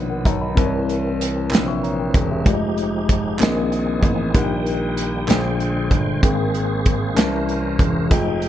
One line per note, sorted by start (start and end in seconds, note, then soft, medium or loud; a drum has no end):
0.00 0.21 A#1 medium
0.00 0.59 B2 medium
0.00 0.55 D#3 medium
0.00 0.55 B3 medium
0.00 0.59 B3 medium
0.00 0.59 D#4 medium
0.00 0.11 A#4 medium
0.00 0.27 C#5 medium
0.10 0.26 A#4 medium
0.10 0.25 F#5 medium
0.25 0.55 B1 medium
0.25 0.41 C#5 medium
0.25 0.41 A#5 medium
0.25 kick medium
0.25 closed hi-hat medium
0.41 0.72 D#5 medium
0.41 0.71 B5 medium
0.55 1.47 C2 medium
0.55 1.47 C3 medium
0.55 2.44 E3 medium
0.55 1.28 C4 medium
0.55 2.44 C4 medium
0.55 1.28 E4 medium
0.55 1.29 A#4 medium
0.55 0.64 C5 medium
0.55 kick medium
0.55 closed hi-hat medium
0.65 1.33 C#5 medium
0.89 closed hi-hat soft
1.21 closed hi-hat medium
1.51 2.10 A#1 medium
1.51 1.67 G5 soft
1.51 1.67 E6 medium
1.51 clap medium
1.51 closed hi-hat medium
1.55 snare loud
1.68 1.83 E5 medium
1.68 1.82 C#6 medium
1.83 1.99 C#5 medium
1.83 1.98 A#5 medium
1.83 closed hi-hat soft
1.99 2.29 A#4 medium
1.99 2.29 G5 medium
2.14 2.43 E1 medium
2.14 kick medium
2.14 closed hi-hat medium
2.31 2.46 G4 soft
2.31 2.61 E5 medium
2.45 3.36 F1 medium
2.45 3.39 F3 medium
2.45 3.38 G#3 medium
2.45 3.17 G#3 medium
2.45 3.39 D#4 medium
2.45 3.17 F4 medium
2.45 3.39 G4 medium
2.45 3.18 G4 medium
2.45 2.54 D5 medium
2.45 kick loud
2.45 closed hi-hat medium
2.55 3.22 D#5 medium
2.78 closed hi-hat medium
3.09 kick medium
3.09 closed hi-hat medium
3.39 3.99 A#1 medium
3.39 5.26 D#3 medium
3.39 5.26 A#3 medium
3.39 4.31 A#3 medium
3.39 4.11 C4 medium
3.39 4.33 C4 medium
3.39 4.33 G#4 medium
3.39 4.12 G#4 medium
3.39 4.12 A#4 medium
3.39 clap medium
3.39 closed hi-hat loud
3.43 4.13 D#5 medium
3.43 snare loud
3.72 closed hi-hat soft
4.03 4.32 A1 medium
4.03 kick medium
4.03 closed hi-hat medium
4.34 5.24 A#1 medium
4.34 5.25 A#2 medium
4.34 5.27 G3 medium
4.34 5.05 D#4 medium
4.34 5.06 G4 medium
4.34 5.07 A#4 medium
4.34 4.42 F#5 medium
4.34 6.21 G5 medium
4.34 kick medium
4.34 closed hi-hat medium
4.44 5.11 G5 loud
4.66 closed hi-hat soft
4.97 closed hi-hat medium
5.27 5.87 A#1 medium
5.27 6.19 A#2 medium
5.27 6.22 D3 medium
5.27 6.21 G#3 medium
5.27 5.99 D4 medium
5.27 6.00 G#4 medium
5.27 8.08 C5 medium
5.27 6.00 C5 medium
5.27 6.01 G5 medium
5.27 snare loud
5.27 clap medium
5.27 closed hi-hat medium
5.60 closed hi-hat soft
5.91 6.20 G1 medium
5.91 kick medium
5.91 closed hi-hat medium
6.21 7.13 G#1 medium
6.21 7.13 G#2 medium
6.21 7.16 G#3 medium
6.21 7.16 A#3 medium
6.21 6.93 C4 medium
6.21 6.94 G#4 medium
6.21 7.16 G#4 medium
6.21 6.95 A#4 medium
6.21 6.95 G5 medium
6.21 kick loud
6.21 closed hi-hat medium
6.54 closed hi-hat soft
6.86 kick medium
6.86 closed hi-hat medium
7.15 7.75 C2 medium
7.15 8.07 C3 medium
7.15 8.10 E3 medium
7.15 7.87 C#4 medium
7.15 8.10 C#4 medium
7.15 7.88 A#4 medium
7.15 8.10 A#4 medium
7.15 7.88 C5 medium
7.15 7.89 E5 medium
7.15 clap medium
7.15 closed hi-hat loud
7.19 snare loud
7.49 closed hi-hat soft
7.79 8.08 E1 medium
7.79 kick loud
7.79 closed hi-hat medium
8.10 8.49 F1 loud
8.10 8.49 F3 medium
8.10 8.49 G#3 medium
8.10 8.49 D#4 medium
8.10 8.49 F4 medium
8.10 8.49 G#4 medium
8.10 8.49 D#5 medium
8.10 8.49 G5 medium
8.10 kick loud
8.10 closed hi-hat medium
8.42 closed hi-hat medium